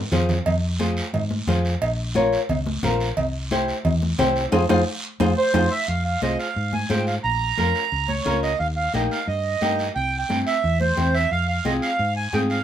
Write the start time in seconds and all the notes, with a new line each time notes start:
0.12 F2 F4 G#4 C5, low conga, short guiro
0.29 low conga, short guiro
0.46 F2, cowbell, low conga, long guiro
0.79 F4 G#4 C5, high conga, short guiro
0.97 short guiro
1.13 G#2, cowbell, low conga, long guiro
1.30 high conga
1.47 F2 F4 G#4 C5, high conga, low conga, short guiro
1.65 short guiro
1.82 A#1, cowbell, long guiro
2.15 F4 A#4 C#5, high conga, short guiro
2.33 short guiro
2.49 C#2, cowbell, low conga, long guiro
2.66 high conga
2.83 A#1 F4 A#4 C5, high conga, low conga, short guiro
3.00 short guiro
3.17 C2, cowbell, low conga, long guiro
3.51 E4 G4 C5, high conga, short guiro
3.68 short guiro
3.85 E2, cowbell, low conga, long guiro
4.02 high conga
4.18 C2 E4 G4 C5, high conga, low conga, low timbale, short guiro
4.36 short guiro
4.52 F2 F4 G#4 C5, high conga, high timbale, long guiro
4.69 F2 F4 G#4 C5, high conga, high timbale, long guiro
5.20 F2 F4 G#4 C5, high conga, high timbale, long guiro
5.37 C5
5.54 F2 F4 G#4 C5, high conga, high timbale, long guiro
5.71 E5
5.88 F2 F5, long guiro
6.05 F5
6.22 C2 F4 G#4 C5 D#5, high conga, short guiro
6.39 F5, short guiro
6.56 G#2, long guiro
6.73 G#5, high conga
6.89 G#2 F4 G#4 C5 G5, high conga, short guiro
7.07 F5, short guiro
7.24 A#1 A#5, long guiro
7.57 F2 C#4 F4 A#4, high conga, short guiro
7.75 short guiro
7.92 C#2, long guiro
8.09 C#5, high conga
8.25 C#2 C#4 F4 A#4, high conga, short guiro
8.43 D#5, short guiro
8.59 D#2 F5, long guiro
8.76 F5
8.94 A#1 A#3 D#4 G4 D#5, high conga, short guiro
9.11 F5, short guiro
9.28 G2 D#5, long guiro
9.61 G2 A#3 D#4 G4, high conga, short guiro
9.79 short guiro
9.95 C2 G5, long guiro
10.18 G5
10.29 G2 C4 E4 G4, high conga, short guiro
10.47 E5, short guiro
10.64 E2, long guiro
10.80 C5, high conga
10.97 E2 C4 E4 G4, high conga, short guiro
11.14 E5, short guiro
11.31 F2 F5, long guiro
11.48 F5
11.65 C2 C4 F4 G#4 D#5, high conga, short guiro
11.82 F5, short guiro
11.99 G#2, long guiro
12.16 G#5
12.33 G#2 C4 F4 G#4 G5, high conga, short guiro
12.50 F5, short guiro